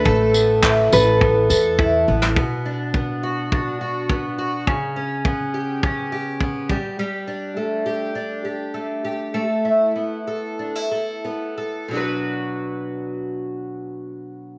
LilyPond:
<<
  \new Staff \with { instrumentName = "Nylon-string guitar" } { \time 4/4 \key b \minor \tempo 4 = 104 b'4. b'2 r8 | r1 | r1 | r1 |
r1 | r1 | }
  \new Staff \with { instrumentName = "Twelve-string acoustic guitar" } { \time 4/4 \key b \minor <a a'>8 b8 e'8 a'8 b8 a'8 e'8 b8 | b,8 d'8 b8 fis'8 d'8 fis'8 b8 fis'8 | cis8 cis'8 b8 g'8 cis'8 g'8 b8 g8 | g8 d'8 a8 g'8 d'8 g'8 a8 g'8 |
a8 e'8 b8 a'8 d'16 e'16 a'8 b8 a'8 | <b, fis d' fis' b'>1 | }
  \new Staff \with { instrumentName = "Upright bass" } { \clef bass \time 4/4 \key b \minor a,,4. a,,4 e,4 a,,8 | r1 | r1 | r1 |
r1 | r1 | }
  \new DrumStaff \with { instrumentName = "Drums" } \drummode { \time 4/4 bd8 tamb8 <hc bd>8 tamb8 bd8 tamb8 bd8. sn16 | bd4 bd4 bd4 bd4 | bd4 bd4 bd4 bd8 bd8 | r4 r4 r4 r4 |
r4 r4 r4 r4 | r4 r4 r4 r4 | }
>>